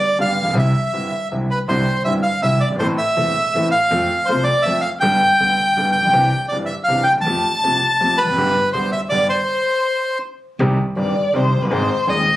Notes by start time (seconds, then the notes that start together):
Already playing: D5
0.18 G1 G2 D3 G3 B3 G4 F5
0.42 A1 A#1
0.46 A#1 B1
0.50 B1 C2 D3
0.55 C2 C3 G3 C4 E4 E5
0.59 E5
0.92 G1 G2 D3 G3 C4 E4
1.31 C2 C3 D3 G3 C4 E4
1.50 B4
1.68 C2 C3 D3 G3 C4 E4 C5
2.04 G1 G2 D3 G3 C4 E4 E5
2.23 F5
2.42 C2 C3 D3 G3 C4 E4 E5
2.60 D5
2.66 F#1 G1
2.72 G1 G#1
2.79 A1 A2 E3 A3 C4 A4 C5
2.98 E5
3.17 E1 E2 E3 A3 C4 A4
3.54 A1 A2 E3 A3 C4 A4
3.71 F5
3.91 F2 F3 A3 C4 A4
4.26 C2 C3 F3 A3 A4 C5
4.30 C4
4.44 D5
4.62 F2 F3 C4 E5
4.66 A3 A4
4.81 F5
5.00 G1 G2 G3 B3 D4 A4 G5
5.40 D2 D3 G3 B3 D4 A4
5.76 G1 G2 G3 B3 D4 A4
5.92 G5
5.99 A1
6.05 A#1
6.09 B1
6.13 C2 C3 E3 C4 D4 G4
6.48 G1 G2 E3 C4 D4 D5
6.53 G4
6.66 E5
6.84 F5
6.88 C2 C3 E3 C4 D4 G4
7.03 G5
7.12 D2
7.16 D#2
7.20 E2 A5
7.25 F2 F3 A3 C4 G4
7.62 C2 C3 F3 A3 C4 G4
8.00 F2 F3 A3 C4 G4
8.18 B4
8.23 E1 E2
8.28 F1 F2
8.32 F#1 G1 F#2
8.38 G1 G2 D3 G3 B3 G4
8.73 D2 D3 G3 B3 G4 C5
8.92 E5
9.09 G1 G2 D3 G3 B3 G4 D5
9.29 C5
10.59 C2 C3 D#3 G3 C4 G4
10.96 G1 G2 D#3 G3 C4 G4 D5
11.33 C2 C3 D#3 G3 C4 G4 C5
11.57 F1
11.61 F#1 G1 B4
11.67 G1 G#1 G#2 D#3 G#3 G#4
11.71 G#1 C4 C5
12.07 D#1 D#2 D#3 G#3 C4 G#4 D#5